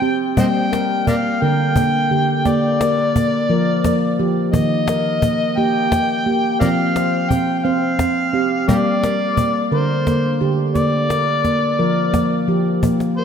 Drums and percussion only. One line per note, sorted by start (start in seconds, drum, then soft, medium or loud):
0.37 cajon bass medium
0.73 cajon slap medium
0.90 cajon slap soft
1.07 cajon bass medium
1.24 cajon slap soft
1.76 cajon bass medium
2.45 cajon bass medium
2.45 cajon slap soft
2.81 cajon slap medium
2.98 cajon slap soft
3.16 cajon bass medium
3.33 cajon slap soft
3.50 cajon slap soft
3.84 cajon bass medium
3.84 cajon slap medium
4.19 cajon slap soft
4.54 cajon bass medium
4.88 cajon slap medium
5.22 cajon bass medium
5.40 cajon slap soft
5.92 cajon bass medium
5.92 cajon slap medium
6.61 cajon bass medium
6.96 cajon slap medium
7.31 cajon bass medium
7.48 cajon slap soft
7.99 cajon bass medium
7.99 cajon slap soft
8.69 cajon bass medium
9.03 cajon slap medium
9.21 cajon slap soft
9.37 cajon bass medium
10.07 cajon bass soft
10.07 cajon slap soft
10.75 cajon bass soft
10.75 cajon slap soft
11.10 cajon slap medium
11.45 cajon bass soft
11.45 cajon slap soft
11.62 cajon slap soft
11.97 cajon slap soft
12.14 cajon bass medium
12.14 cajon slap medium
12.66 cajon slap soft
12.83 cajon bass medium
13.00 cajon slap soft